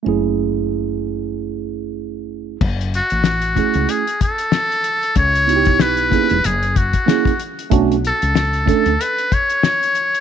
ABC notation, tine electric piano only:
X:1
M:4/4
L:1/8
Q:"Swing 16ths" 1/4=94
K:F#m
V:1 name="Tine electric piano"
[A,CEG]8 | z3 [A,CEG] z4 | z [B,^DEF=G]2 [^A,CE^G] z2 [A,CEG] z | [A,CDF] z2 [A,CDA] z4 |]